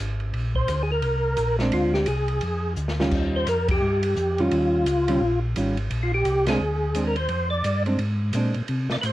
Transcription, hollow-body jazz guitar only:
1.60 G#3 C4 D4
2.99 D#3 G3 C#4 F4
4.40 D#3 G3 C#4 F4
5.08 D#3 G3 C#4 F4
5.56 D#3 G3 C#4 F4
6.47 G#3 C4 D4
6.95 G#3 C4 D4
7.86 G#3 C4 D4
8.35 G#3 C4 D4

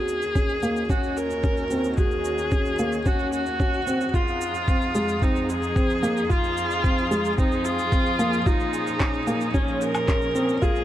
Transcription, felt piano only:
Already playing: F#4
0.36 C#4
0.63 A#3
0.90 C#4
1.44 C#4
1.71 C4
1.98 F#4
2.52 C#4
2.79 A#3
3.06 C#4
3.60 C#4
3.87 C4
4.14 F4
4.68 C4
4.95 G#3
5.22 C4
5.76 C4
6.03 A#3
6.29 F4
6.84 C4
7.11 G#3
7.38 C4
7.92 C4
8.19 A#3
8.46 F4
9.00 C#4
9.27 A#3
9.54 C#4
10.08 C#4
10.35 C4
10.62 F4

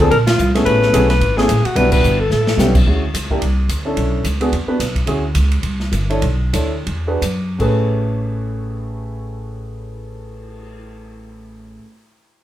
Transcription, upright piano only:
0.00 F3 A#3 C4 D4 G#4
0.54 A3 B3 C#4 E4 G#4
0.93 A3 B3 C#4 E4 G#4
1.37 A3 B3 C#4 E4 G#4
1.76 G3 B3 D4 E4 F#4
2.59 G3 B3 C#4 E4 G4
2.87 G#3 C#4 E4 F#4
3.30 A#3 D4 E4 G4
3.85 C#4 D4 E4 A4
4.40 B3 D4 F#4 G#4
4.68 B3 D4 F#4 B4
5.07 C#4 E4 F#4 G#4
6.10 D4 E4 A4 C#5
6.53 D4 E4 A4 C#5
7.07 D4 F#4 G#4 B4
7.59 A2 A3 C#4 G#4 B4

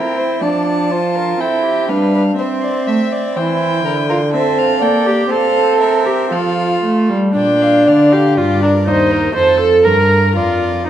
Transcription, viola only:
Already playing: C4
0.42 F3
1.40 C4
1.89 G3
2.39 C4
3.36 E3
3.85 D3
4.34 C4
4.82 A#3
5.30 C4
6.32 F3
6.84 A3
7.09 G3
7.36 D4
8.12 G4
8.37 F4
8.62 D4
8.87 D#4
9.35 C5
9.60 A4
9.85 A#4
10.35 F4

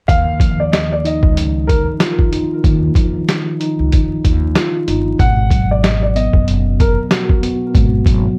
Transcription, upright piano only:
0.08 F5
0.60 D5
0.72 D#5
0.92 D5
1.06 D#5
1.67 A#4
5.19 F#5
5.71 D5
5.83 D#5
6.03 D5
6.16 D#5
6.80 A#4

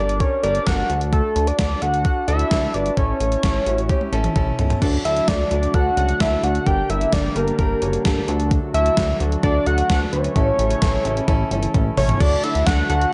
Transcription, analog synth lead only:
Already playing: D5
0.20 C#5
0.43 D5
0.67 F#5
1.13 A4
1.47 D5
1.82 F#5
2.28 E5
2.74 D5
2.97 C#5
5.05 E5
5.28 D5
5.74 F#5
5.97 F#5
6.20 E5
6.44 F#5
6.67 G5
6.90 E5
7.13 D5
7.36 A#4
8.74 E5
9.43 D5
9.67 F#5
9.90 F#5
10.13 C#5
11.97 C#5
12.20 D5
12.43 E5
12.66 F#5
12.90 F#5

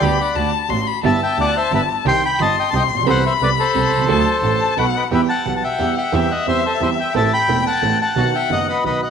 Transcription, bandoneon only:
Already playing: D5 G5
0.21 D5 F#5
1.05 E5 A5
1.23 E5 G5
1.41 D5 F#5
1.57 C5 E5
1.75 B4 E5
2.08 G5 C6
2.25 G5 B5
2.41 D#5 A5
2.59 D#5 G5
2.70 A5
2.76 D#5 G5
3.09 C5 F#5
3.26 C5 E5
3.42 B4 D5
3.60 A4 C5
4.78 F#4 B4
4.96 B4 D#5
5.13 B4 E5
5.29 F#5 A5
5.56 A5
5.63 E5 G5
5.97 E5 G5
6.31 D#5 F#5
6.48 C5 E5
6.65 A4 C5
6.82 C5 E5
7.00 E5 G5
7.16 E5 A5
7.33 G5 B5
7.67 F#5 A5
8.02 F#5 A5
8.35 E5 G5
8.52 D#5 F#5
8.69 B4 D#5
8.86 B4 D#5
9.03 D#5 F#5

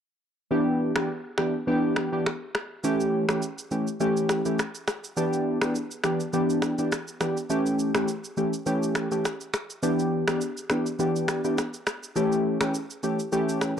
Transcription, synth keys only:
0.51 E3 B3 D4 G4
0.96 E3 B3 D4 G4
1.38 E3 B3 D4 G4
1.67 E3 B3 D4 G4
2.12 E3 B3 D4 G4
2.84 E3 A3 C#4 G4
3.29 E3 A3 C#4 G4
3.71 E3 A3 C#4 G4
4.00 E3 A3 C#4 G4
4.45 E3 A3 C#4 G4
5.17 E3 B3 D4 G4
5.62 E3 B3 D4 G4
6.04 E3 B3 D4 G4
6.33 E3 B3 D4 G4
6.78 E3 B3 D4 G4
7.21 E3 B3 D4 G4
7.50 E3 A3 C#4 G4
7.95 E3 A3 C#4 G4
8.37 E3 A3 C#4 G4
8.66 E3 A3 C#4 G4
9.11 E3 A3 C#4 G4
9.83 E3 B3 D4 G4
10.28 E3 B3 D4 G4
10.70 E3 B3 D4 G4
10.99 E3 B3 D4 G4
11.44 E3 B3 D4 G4
12.16 E3 A3 C#4 G4
12.61 E3 A3 C#4 G4
13.03 E3 A3 C#4 G4
13.32 E3 A3 C#4 G4

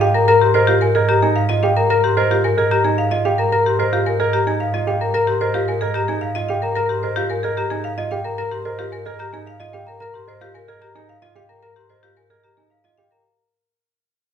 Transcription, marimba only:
0.01 F5
0.14 A#4
0.28 A#4
0.41 G4
0.54 C5
0.67 G4
0.81 A#4
0.95 G#4
1.09 G4
1.22 G#4
1.36 F5
1.49 D#5
1.63 F5
1.76 A#4
1.90 A#4
2.04 G4
2.17 C5
2.31 G4
2.44 A#4
2.58 G#4
2.71 G4
2.85 G#4
2.98 F5
3.11 D#5
3.25 F5
3.38 A#4
3.52 A#4
3.66 G4
3.80 C5
3.93 G4
4.06 A#4
4.20 G#4
4.33 G4
4.47 G#4
4.60 F5
4.74 D#5
4.87 F5
5.01 A#4
5.14 A#4
5.27 G4
5.41 C5
5.54 G4
5.68 A#4
5.81 G#4
5.94 G4
6.08 G#4
6.21 F5
6.35 D#5
6.48 F5
6.62 A#4
6.75 A#4
6.89 G4
7.03 C5
7.16 G4
7.30 A#4
7.43 G#4
7.57 G4
7.70 G#4
7.84 F5
7.98 D#5
8.11 F5
8.24 A#4
8.38 A#4
8.51 G4
8.65 C5
8.79 G4
8.93 A#4
9.06 G#4
9.20 G4
9.34 G#4
9.47 F5
9.60 D#5
9.74 F5
9.88 A#4
10.02 A#4
10.15 G4
10.29 C5
10.42 G4
10.55 A#4
10.68 G#4
10.82 G4
10.96 G#4
11.09 F5
11.22 D#5
11.36 F5
11.49 A#4
11.63 A#4
11.76 G4
11.89 C5
12.03 G4
12.17 A#4
12.30 G#4
12.44 G4
12.57 G#4
12.70 F5
12.84 D#5
12.98 F5
13.11 A#4

